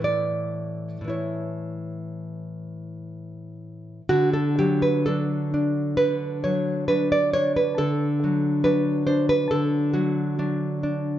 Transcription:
\new Staff \with { instrumentName = "Nylon-string guitar" } { \time 4/4 \key d \major \tempo 4 = 65 << { d''4 cis''2~ cis''8 r8 | fis'16 a'16 g'16 b'16 a'4 b'8 cis''8 b'16 d''16 cis''16 b'16 | a'4 b'8 c''16 b'16 a'8 fis'4 r8 | } \\ { <a, e e'>4 <a, e e'>2. | d8 fis8 <fis d'>8 d'8 d8 fis8 <fis d'>8 d'8 | d8 fis8 <fis d'>8 d'8 d8 fis8 <fis d'>8 d'8 | } >> }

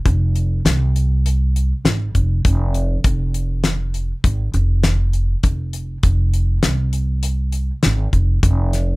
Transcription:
<<
  \new Staff \with { instrumentName = "Upright bass" } { \clef bass \time 5/4 \key f \minor \tempo 4 = 100 f,,4 c,2 aes,,8 f,,8 f,,4 | f,,2 aes,,8 f,,4. f,,4 | f,,4 c,2 aes,,8 f,,8 f,,4 | }
  \new DrumStaff \with { instrumentName = "Drums" } \drummode { \time 5/4 <hh bd>8 hh8 <hh sn>8 hh8 hh8 hh8 <hh sn>8 <hh bd>8 <hh bd>8 hh8 | <hh bd>8 hh8 <hh sn>8 hh8 <hh bd>8 hh8 <hh sn>8 hh8 <hh bd>8 hh8 | <hh bd>8 hh8 <hh sn>8 hh8 hh8 hh8 <hh sn>8 <hh bd>8 <hh bd>8 <hh sn>8 | }
>>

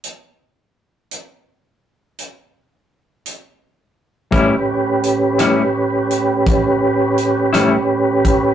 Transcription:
<<
  \new Staff \with { instrumentName = "Tonewheel organ" } { \time 12/8 \key a \mixolydian \tempo 4. = 56 r1. | <a, cis' g' b'>1. | }
  \new Staff \with { instrumentName = "Clean electric guitar" } { \time 12/8 \key a \mixolydian r1. | <a, g cis' e'>8 r4 <a, g cis' e'>8 r2 r8 <a, g cis' e'>8 r4 | }
  \new DrumStaff \with { instrumentName = "Drums" } \drummode { \time 12/8 hh4. hh4. hh4. hh4. | <hh bd>4 hh8 <hh ss>4 hh8 <hh bd>4 hh8 <hh ss>4 <hh bd>8 | }
>>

